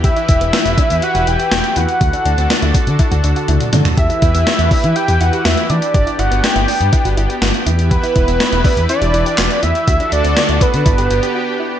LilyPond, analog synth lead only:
\new Staff \with { instrumentName = "Analog synth lead" } { \time 4/4 \key e \minor \tempo 4 = 122 e''2 fis''8 g''8 g''8 fis''8~ | fis''4. r2 r8 | e''2 g''8 fis''8 e''8 d''8 | d''8 fis''8 g''4. r4. |
b'2 d''4. e''8~ | e''8 d''4 b'2 r8 | }